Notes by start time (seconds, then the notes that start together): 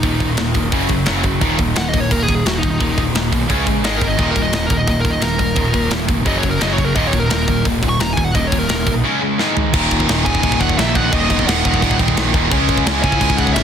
Already playing: D#4
0.03 D#1 D#2 A#2 D#3, kick, open hi-hat
0.20 D#2 A#2, kick, open hi-hat
0.37 D#1 D#2 A#2, snare, open hi-hat
0.54 E1 D#2 A#2, kick, open hi-hat
0.72 F#1 F#2 C#3 F#3, kick, open hi-hat
0.89 F#1 F#2 C#3, kick, open hi-hat
1.06 F#1 F#2 C#3 F#3, snare, open hi-hat
1.23 F#2 C#3, kick, open hi-hat
1.41 D#1 D#2 A#2 D#3, kick, open hi-hat
1.58 D#1 D#2 A#2, kick, open hi-hat
1.76 D#1 D#2 A#2 F#5, snare, open hi-hat
1.89 D#5
1.93 D#1 D#2 A#2, kick, open hi-hat
2.00 C#5
2.11 D#1 D#2 A#2 A#4, kick, open hi-hat
2.23 G#4
2.28 D#1 D#2 A#2, kick, open hi-hat
2.35 G#4
2.44 D#1 D#2 A#2 F#4, snare, open hi-hat
2.58 D#4
2.63 D#1 D#2 A#2, kick, open hi-hat
2.70 D#4
2.80 D#1 D#2 A#2 D#3, kick, open hi-hat
2.98 D#2 A#2, kick, open hi-hat
3.14 D#1 D#2 A#2, snare, open hi-hat
3.32 B1 D#2 A#2, kick, open hi-hat
3.49 C#2 C#3 G#3 C#4, kick, open hi-hat
3.66 A#1 C#3 G#3, kick, open hi-hat
3.83 G#1 G#2 D#3 G#3 D#5, snare, open hi-hat
3.97 A#4
4.02 G#2 D#3, kick, open hi-hat
4.07 D#5
4.19 D#1 D#2 A#2 D#3 D#5, kick, crash
4.31 A#4
4.36 D#1 D#2 A#2, kick, open hi-hat
4.42 D#5
4.52 D#1 D#2 A#2 D#5, snare, open hi-hat
4.66 D#1 A#4, kick, open hi-hat
4.71 D#2 A#2
4.77 D#5
4.87 D#1 D#2 A#2 D#5, kick, open hi-hat
5.00 A#4
5.04 D#1 D#2 A#2, kick, open hi-hat
5.11 D#5
5.22 D#1 D#2 A#2 A#4, snare, open hi-hat
5.39 D#1 D#2 A#2, kick, open hi-hat
5.56 D#1 D#2 A#2 D#3, kick, open hi-hat
5.74 D#2 A#2, kick, open hi-hat
5.90 D#1 D#2 A#2, snare, open hi-hat
6.08 F1 D#2 A#2, kick, open hi-hat
6.26 F#1 F#2 C#3 F#3 D#5, kick, open hi-hat
6.39 C#5
6.43 F#1 F#2 C#3, kick, open hi-hat
6.50 A#4
6.60 F#1 F#2 C#3 F#3 D#5, snare, open hi-hat
6.73 C#5
6.77 F#2 C#3, kick, open hi-hat
6.85 A#4
6.95 D#1 D#2 A#2 D#3 D#5, kick, open hi-hat
7.07 C#5
7.13 D#1 D#2 A#2, kick, open hi-hat
7.19 A#4
7.30 D#1 D#2 A#2 A#4, snare, open hi-hat
7.48 D#1 D#2 A#2, kick, open hi-hat
7.65 D#1 D#2 A#2, kick, open hi-hat
7.83 D#1 D#2 A#2, kick, open hi-hat
7.89 C#6
7.99 D#1 D#2 A#2 A#5, snare, open hi-hat
8.13 G#5
8.17 D#1 D#2 A#2, kick, open hi-hat
8.24 F#5
8.34 D#1 D#2 A#2 D#3 D#5, kick, open hi-hat
8.47 C#5
8.52 D#2 A#2, kick, open hi-hat
8.59 A#4
8.69 D#1 D#2 A#2, snare, open hi-hat
8.87 B1 D#2 A#2, kick, open hi-hat
9.05 C#3 G#3 C#4
9.21 C#3 G#3
9.39 G#2 D#3 G#3, snare
9.56 G#2 D#3, floor tom
9.73 D#1 D#2 A#2 D#3, kick, crash
9.91 kick, crash
10.00 kick
10.08 D#1 D#2 A#2 D#3, snare, crash
10.25 D#1 D#2 A#2 D#3 D#4 G#5, kick, crash
10.35 kick
10.42 D#1 D#2 A#2 D#3, kick, crash
10.52 kick
10.60 D#1 D#4 F#5, kick, crash
10.69 kick
10.77 A#1 D#2 A#2 D#3 A#3 E5, snare, crash
10.95 D#2 A#2 D#3 D#4 F#5, kick, crash
11.12 D#1 D#2 A#2 D#3 A#3 D#5, kick, crash
11.30 D#1 B3 D#5, kick, crash
11.39 kick
11.47 D#1 D#2 A#2 D#3 D#4 F#5, snare, crash
11.65 D#1 D#2 A#2 D#3, kick, crash
11.74 kick
11.82 D#1 D#2 A#2 D#3, kick, crash
11.91 kick
11.99 D#1, kick, crash
12.08 kick
12.16 A#1 D#2 A#2 D#3, snare, crash
12.34 D#1 D#2 A#2 D#3, kick, crash
12.51 C#2 C#3 G#3 C#4, kick, crash
12.69 kick, crash
12.78 kick
12.86 C#2 C#3 G#3 C#4, snare, crash
13.03 C#2 C#3 G#3 C#4 E4 G#5, kick, crash
13.12 kick
13.21 C#2 C#3 G#3 C#4, kick, crash
13.30 kick
13.37 C#2 D#4 F#5, kick, crash
13.47 kick
13.54 G#1 C#3 G#3 C#4 E5, snare, crash